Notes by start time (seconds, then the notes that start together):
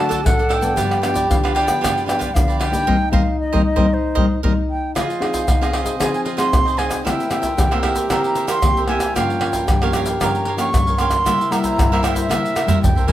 Already playing: D3 F#3 A3 F#4 A5
0.00 D4
0.09 D4 A4 D5 F#5, pandeiro, shaker, surdo
0.24 A2 F#3 A3 D4 A4 F#5, pandeiro, tamborim, shaker, surdo
0.37 A4 D5 F#5, pandeiro, shaker
0.49 D4 A4 D5 F#5, pandeiro, tamborim
0.53 G5
0.61 F3 B3 D4 A4 D5 F#5, pandeiro, shaker, surdo
0.76 G2 F4 G4 B4 D5, pandeiro, shaker, surdo
0.91 pandeiro, tamborim, shaker
1.02 F3 B3 D4 F4 G4 B4 D5 G5, pandeiro, tamborim, shaker
1.14 G4 B4 D5, pandeiro, shaker, surdo
1.30 D3 F3 B3 D4 F5, pandeiro, shaker, surdo
1.43 F4 G4 B4 D5, pandeiro, tamborim, shaker
1.55 F4 G4 B4 D5 G5, pandeiro
1.67 F3 B3 D4 G4 B4 D5, pandeiro, tamborim, shaker, surdo
1.81 G2 F4 G4 B4 D5, pandeiro, tamborim, shaker, surdo
1.98 pandeiro, shaker
2.06 F3 B3 D4 F4 G4 B4 D5 G5, pandeiro, tamborim, shaker
2.19 F4 G4 B4 D5, pandeiro, shaker, surdo
2.34 D3 F3 B3 D4 F5, pandeiro, tamborim, shaker, surdo
2.48 G4 B4 D5, pandeiro, shaker
2.60 F4 G4 B4 D5 G5, pandeiro, tamborim
2.72 A#3 D#4 G4 B4 D5, pandeiro, shaker, surdo
2.81 D4
2.87 G3 A#3 C4 D#4 A#4 C5 D#5, surdo
3.11 G3 A#3 C4 A#4 C5 D#5 F5, surdo
3.40 D#5
3.53 G3 A#3 C4 A#4 C5 D#5, surdo
3.65 D#5
3.76 G3 A#3 C4 A#4 C5 D#5, surdo
3.94 C5
4.15 G3 A#3 C4 A#4 C5 D#5, surdo
4.43 G3 A#3 C4 D#4 A#4 C5 D#5, surdo
4.70 G5
4.95 F3 F4 G#4 C5 D#5 F5, pandeiro, tamborim, shaker, surdo
5.10 pandeiro, shaker
5.20 C4 D#4 F4 G#4 C5 D#5, pandeiro, tamborim
5.33 G#4 C5 D#5, pandeiro, shaker, surdo
5.47 C3 D#4, pandeiro, tamborim, shaker, surdo
5.61 C4 D#4 F4 G#4 C5 D#5, pandeiro, tamborim, shaker
5.67 B3
5.73 C4 F4 G#4 C5 D#5, pandeiro, tamborim
5.84 C4 D#4 G#4 C5 D#5, pandeiro, shaker, surdo
5.88 G#4
5.99 F3 C4 D#4 F4 G#4 C5 D#5 G#5, pandeiro, tamborim, shaker, surdo
6.14 G#5, pandeiro, shaker
6.25 F4 G#4 C5 D#5, pandeiro
6.37 C4 D#4 F4 G#4 C5 D#5 C6, pandeiro, tamborim, shaker
6.53 C3, pandeiro, tamborim, shaker, surdo
6.65 G#4 C5 D#5, pandeiro, shaker, surdo
6.77 C4 D#4 F4 G#4 C5 D#5 G#5, pandeiro, tamborim
6.89 G#4 C5 D#5, pandeiro, tamborim, shaker, surdo
7.05 E3 A#3 C4 E4 G4 A#4 C5 E5 G5, pandeiro, tamborim, shaker, surdo
7.20 pandeiro, shaker
7.30 A#3 C4 E4 G4 A#4 C5 E5, pandeiro, tamborim, shaker
7.42 A#4 C5 E5, pandeiro, shaker, surdo
7.57 E3 A#3 C4 G4, pandeiro, tamborim, shaker, surdo
7.71 A#3 C4 E4 G4 A#4 C5 E5, pandeiro, tamborim, shaker
7.83 E4 A#4 C5 E5, pandeiro, tamborim, surdo
7.95 A#4 C5 E5, pandeiro, shaker, surdo
8.10 E3 A#3 C4 E4 G4 A#4 C5 E5 A#5, pandeiro, tamborim, shaker, surdo
8.24 A#5, pandeiro, shaker
8.35 E4 A#4 C5 E5, pandeiro, shaker
8.47 E4 A#4 C5 E5 C6, pandeiro, tamborim, shaker
8.62 E3 A#3 C4 G4, pandeiro, tamborim, shaker, surdo
8.77 A#4 C5 E5, pandeiro, shaker, surdo
8.88 A#3 C4 E4 G4 A#4 C5 E5 G#5, pandeiro, tamborim
9.00 A#4 C5 E5, pandeiro, tamborim, shaker, surdo
9.15 G2 F3 A#3 C#4 F4 G4 A#4 C#5 F5 G5, pandeiro, tamborim, shaker, surdo
9.30 pandeiro, shaker
9.40 F3 A#3 C#4 G4 A#4 C#5 F5, pandeiro, tamborim
9.53 A#4 C#5 F5, pandeiro, shaker, surdo
9.68 G2 G4, pandeiro, tamborim, shaker, surdo
9.81 F3 A#3 C#4 G4 A#4 C#5 F5, pandeiro, tamborim, shaker
9.93 G4 A#4 C#5 F5, pandeiro, tamborim, shaker, surdo
10.06 A#4 C#5 F5, pandeiro, shaker, surdo
10.20 G2 F3 A#3 C#4 G4 A#4 C#5 F5 A#5, pandeiro, tamborim, shaker, surdo
10.35 A#5, pandeiro, shaker
10.45 G4 A#4 C#5 F5, pandeiro
10.57 F3 A#3 C#4 G4 A#4 C#5 F5 C#6, pandeiro, tamborim, shaker
10.73 G2, pandeiro, tamborim, shaker, surdo
10.87 A#4 C#5 F5, pandeiro, shaker, surdo
10.98 F3 A#3 C#4 G4 A#4 C#5 F5 C6, pandeiro, tamborim, shaker
11.11 A#4 C#5 F5, pandeiro, tamborim, shaker, surdo
11.24 C3 G3 A#3 E4 A#4 C5 E5, pandeiro, tamborim, shaker, surdo
11.41 pandeiro, shaker
11.50 G3 A#3 E4 A#4 C5 E5 A#5, pandeiro, tamborim, shaker
11.63 A#4 C5 E5 A#5, pandeiro, shaker, surdo
11.76 G2, pandeiro, tamborim, shaker, surdo
11.90 G3 A#3 E4 A#4 C5 E5, pandeiro, tamborim, shaker
12.03 E4 A#4 C5 E5 G5, pandeiro, tamborim, shaker
12.15 A#4 C5 E5, pandeiro, shaker, surdo
12.29 C3 G3 A#3 E4 A#4 C5 E5, pandeiro, tamborim, shaker, surdo
12.45 pandeiro, shaker
12.56 E4 A#4 C5 E5, pandeiro, tamborim, shaker
12.66 G3 A#3 E4 A#4 C5 E5, surdo, pandeiro, shaker
12.81 G2 G5, surdo, pandeiro, shaker
12.96 A#4 C5 E5, pandeiro, shaker, surdo
13.06 G3 A#3 E4 A#4 G#5, pandeiro, surdo